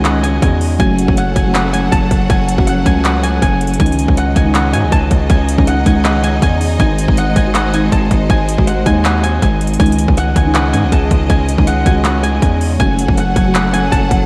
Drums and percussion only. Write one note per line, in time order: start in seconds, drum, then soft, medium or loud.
0.05 clap loud
0.05 closed hi-hat medium
0.24 closed hi-hat medium
0.42 kick loud
0.42 closed hi-hat medium
0.61 open hi-hat medium
0.80 kick loud
0.80 closed hi-hat medium
0.98 closed hi-hat loud
1.08 kick loud
1.17 closed hi-hat medium
1.36 kick medium
1.36 closed hi-hat medium
1.55 clap loud
1.55 closed hi-hat medium
1.74 closed hi-hat medium
1.92 kick loud
1.92 closed hi-hat medium
2.11 kick loud
2.11 closed hi-hat medium
2.30 kick loud
2.30 closed hi-hat medium
2.49 closed hi-hat loud
2.58 kick loud
2.67 closed hi-hat medium
2.86 kick medium
2.86 closed hi-hat medium
3.05 clap loud
3.05 closed hi-hat medium
3.24 closed hi-hat medium
3.42 kick loud
3.42 closed hi-hat medium
3.61 closed hi-hat soft
3.61 open hi-hat medium
3.67 closed hi-hat soft
3.74 closed hi-hat medium
3.80 kick loud
3.80 closed hi-hat medium
3.86 closed hi-hat medium
3.92 closed hi-hat medium
3.99 closed hi-hat medium
4.08 kick loud
4.17 closed hi-hat medium
4.36 kick medium
4.36 closed hi-hat medium
4.55 clap loud
4.55 closed hi-hat medium
4.74 closed hi-hat medium
4.92 kick loud
4.92 closed hi-hat medium
5.11 kick medium
5.11 closed hi-hat medium
5.30 kick loud
5.30 closed hi-hat medium
5.49 closed hi-hat medium
5.58 kick loud
5.67 closed hi-hat medium
5.86 kick medium
5.86 closed hi-hat medium
6.05 clap loud
6.05 closed hi-hat medium
6.24 closed hi-hat medium
6.42 kick loud
6.42 closed hi-hat medium
6.61 open hi-hat medium
6.80 kick loud
6.80 closed hi-hat medium
6.98 closed hi-hat loud
7.08 kick loud
7.17 closed hi-hat medium
7.36 kick medium
7.36 closed hi-hat medium
7.55 clap loud
7.55 closed hi-hat medium
7.74 closed hi-hat medium
7.92 kick loud
7.92 closed hi-hat medium
8.11 kick medium
8.11 closed hi-hat medium
8.30 kick loud
8.30 closed hi-hat medium
8.49 closed hi-hat loud
8.58 kick loud
8.67 closed hi-hat medium
8.86 kick medium
8.86 closed hi-hat medium
9.05 clap loud
9.05 closed hi-hat medium
9.24 closed hi-hat medium
9.42 kick loud
9.42 closed hi-hat medium
9.61 closed hi-hat soft
9.61 open hi-hat medium
9.67 closed hi-hat medium
9.74 closed hi-hat medium
9.80 kick loud
9.80 closed hi-hat medium
9.86 closed hi-hat medium
9.92 closed hi-hat medium
9.99 closed hi-hat loud
10.08 kick loud
10.17 closed hi-hat medium
10.36 kick medium
10.36 closed hi-hat medium
10.55 clap loud
10.55 closed hi-hat medium
10.74 closed hi-hat medium
10.92 kick loud
10.92 closed hi-hat medium
11.11 kick medium
11.11 closed hi-hat medium
11.30 kick loud
11.30 closed hi-hat medium
11.49 closed hi-hat medium
11.58 kick loud
11.67 closed hi-hat medium
11.86 kick medium
11.86 closed hi-hat medium
12.05 clap loud
12.05 closed hi-hat medium
12.24 closed hi-hat medium
12.42 kick loud
12.42 closed hi-hat medium
12.61 open hi-hat medium
12.80 kick loud
12.80 closed hi-hat medium
12.99 closed hi-hat loud
13.08 kick loud
13.17 closed hi-hat medium
13.36 kick medium
13.36 closed hi-hat medium
13.55 clap loud
13.55 closed hi-hat loud
13.74 closed hi-hat medium
13.92 kick loud
13.92 closed hi-hat medium
14.11 kick medium
14.11 closed hi-hat medium